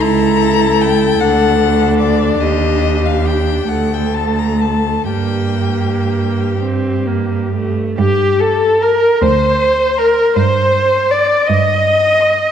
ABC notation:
X:1
M:6/8
L:1/16
Q:3/8=49
K:Gm
V:1 name="Violin"
b4 g2 ^f4 d2 | e3 f g2 ^f g a b a2 | g6 z6 | z4 b2 z4 b2 |
z4 c'2 z4 c'2 |]
V:2 name="Violin"
A12 | G6 A6 | G8- G3 z | G2 A2 B2 c4 B2 |
c4 d2 e6 |]
V:3 name="Viola"
=E6 D6- | D6 A,6 | B,6 C2 B,2 A,2 | G2 A2 B2 c4 B2 |
c4 d2 e6 |]
V:4 name="Cello" clef=bass
^C,,6 D,,6 | E,,6 D,,6 | G,,8- G,,3 z | G,,6 D,,6 |
G,,6 G,,6 |]